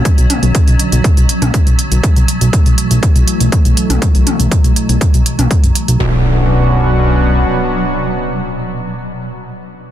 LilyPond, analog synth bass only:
\new Staff \with { instrumentName = "Analog synth bass" } { \clef bass \time 4/4 \key b \minor \tempo 4 = 121 r16 b,,16 r16 b,,16 r16 b,,16 r16 b,,16 r16 b,,16 r16 b,,16 r16 b,,16 r16 b,,16 | r16 b,,16 r16 b,,16 r16 b,,16 r16 b,,16 r16 b,,16 r16 b,,16 r16 b,,16 r16 b,,16 | r16 b,,16 r16 b,,16 r16 b,,16 r16 b,,16 r16 b,,16 r16 b,,16 r16 fis,,16 r16 b,,16 | b,,2. r4 |
r1 | }